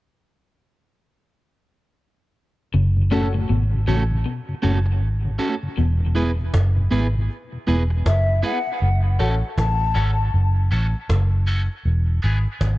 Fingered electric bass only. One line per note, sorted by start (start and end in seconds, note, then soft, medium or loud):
2.74 3.46 F#1 medium
3.50 3.86 G#1 medium
3.88 4.24 A1 medium
4.64 5.02 F#1 medium
5.02 5.38 G#1 medium
5.78 6.50 E1 loud
6.54 6.90 F#1 medium
6.92 7.27 G#1 medium
7.68 8.04 E1 medium
8.06 8.42 F#1 medium
8.82 9.17 F#1 loud
9.20 9.42 A1 medium
9.58 9.93 A1 medium
9.96 10.31 G#1 medium
10.34 10.69 F#1 medium
10.72 10.93 A1 medium
11.10 11.67 F#1 loud
11.85 12.21 E1 medium
12.24 12.45 G#1 medium
12.61 12.78 G#1 medium